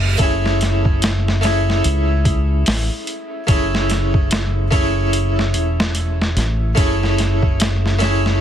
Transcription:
Already playing: F#1 A3 C#4 E4 G#4, reverse cymbal
0.18 F#1 A3 C#4 E4, kick, closed hi-hat
0.23 G#4
0.46 snare
0.61 snare, closed hi-hat
0.85 kick
1.02 snare, closed hi-hat
1.28 snare
1.41 A3 C#4 E4, snare, closed hi-hat
1.46 G#4
1.70 snare
1.84 C#2, closed hi-hat
2.25 kick, closed hi-hat
2.66 A1, snare, open hi-hat
3.07 closed hi-hat
3.47 F#1 A3 C#4 E4, kick, closed hi-hat
3.52 G#4
3.75 snare
3.90 snare, closed hi-hat
4.14 kick
4.31 snare, closed hi-hat
4.71 A3 C#4 E4, kick, closed hi-hat
4.75 G#4
5.13 closed hi-hat
5.39 snare
5.54 E1, closed hi-hat
5.80 snare
5.95 closed hi-hat
6.22 snare
6.36 A1, snare, closed hi-hat
6.75 F#1 A3 C#4 E4, kick, closed hi-hat
6.80 G#4
7.03 snare
7.18 snare, closed hi-hat
7.43 kick
7.60 snare, closed hi-hat
7.86 snare
7.99 A3 C#4 E4, snare, closed hi-hat
8.04 G#4
8.26 snare

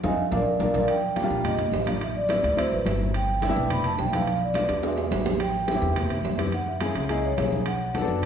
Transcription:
0.03 F2 C4 D#4 F4 D#5 F5 G#5, high conga, high timbale
0.32 A#1 A#3 D4 F4 A#4 D5 F5, high conga, high timbale
0.60 A#1 A#3 D4 F4 A#4 D5 F5, high conga, high timbale
0.73 A#1 A#3 D4 F4 A#4 D5 F5, high conga, high timbale
0.88 G5, high conga, high timbale
1.02 high conga
1.16 G3 A#3 D4 F4, high conga, high timbale, low timbale
1.23 G3 A#3 D4 F4
1.30 A#1, high conga
1.44 D#5, high conga, low conga, high timbale
1.58 high conga, low conga, high timbale
1.71 A1, high conga, low timbale
1.86 G3 A#3 D4 F4, high conga, high timbale
2.01 E5, high conga, high timbale
2.15 D5, high conga
2.29 G3 B3 C4 E4, high conga, high timbale, low timbale
2.43 D2 G3 B3 C4 E4, high conga, high timbale
2.57 F#3 A3 C4 E4 C5, high conga, high timbale
2.71 A1 B4, high conga
2.85 G1 F#3 A3 C4 E4, high conga, high timbale, low timbale
3.00 high conga
3.14 G5, high conga, high timbale
3.28 high conga
3.42 A3 B3 D4 E4, high conga, high timbale, low timbale
3.49 A3 B3 D4 E4
3.56 B1, high conga
3.70 B5, high conga, low conga, high timbale
3.84 A5, high conga, low conga, high timbale
3.98 B1 G5, high conga, low timbale
4.13 A3 B3 D4 E4 F5, high conga, high timbale
4.27 high conga, high timbale
4.40 D5, high conga
4.54 A3 B3 D4 F4, high conga, high timbale, low timbale
4.68 E2 A3 B3 D4 G4, high conga, high timbale
4.83 G#3 B3 D4 F#4 E5, high conga, high timbale
4.98 high conga, low timbale
5.11 A1 G#3 B3 D4 F#4, high conga, low timbale
5.25 high conga, low timbale
5.39 G5, high conga, high timbale
5.54 high conga
5.67 B3 C4 E4 G4, high conga, high timbale, low timbale
5.74 B3 C4 E4 G4
5.82 E2, high conga
5.96 E5, high conga, low conga, high timbale
6.10 high conga, low conga, high timbale
6.24 F#2, high conga, low timbale
6.38 B3 C4 E4 G4, high conga, high timbale
6.52 F#5, high conga, high timbale
6.67 E5, high conga
6.80 A#3 C#4 E4 G#4, high conga, high timbale, low timbale
6.95 C#2 A#3 C#4 E4 G#4, high conga, high timbale
7.09 A#3 C#4 E4 G#4 D#5, high conga, high timbale
7.23 C#5, high conga
7.37 B1 A#3 C#4 E4 G#4, high conga, high timbale, low timbale
7.52 high conga
7.66 F#5, high conga, high timbale
7.81 high conga
7.94 B3 D4 F#4 A4, high conga, high timbale, low timbale
8.01 B3 D4 F#4 A4
8.08 F#2, high conga
8.22 high conga, low conga

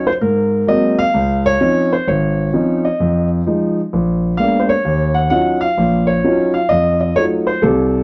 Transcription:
0.07 C5
0.21 G#2 A#4
0.67 F#3 G#3 A#3 C4 D#5
0.99 F5
1.14 C#2
1.46 C#5
1.60 F3 C4 C#4 D#4
1.93 C5
2.08 G#1 C#5
2.53 F3 C4 C#4 D#4
2.85 D#5
3.00 F2
3.47 F3 G#3 D#4
3.93 A#1
4.37 G#3 A#3 B3 D4 F5
4.60 C5
4.69 C#5
4.85 D#2
5.14 F#5
5.30 F#3 C#4 D#4 F4 F#5
5.61 F5
5.77 A#1 A#2
6.07 C#5
6.24 F#3 C#4 D#4 F4
6.54 F5
6.69 F2 D#5
7.01 D#5
7.16 F#3 A3 D#4 F4 C#5
7.47 C5
7.62 C2 C3 A4

